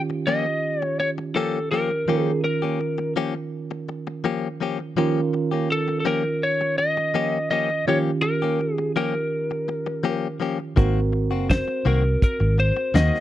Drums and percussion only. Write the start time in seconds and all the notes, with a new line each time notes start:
10.77 kick, closed hi-hat
11.50 kick, snare, closed hi-hat
12.22 kick, closed hi-hat
12.95 snare, closed hi-hat
13.14 snare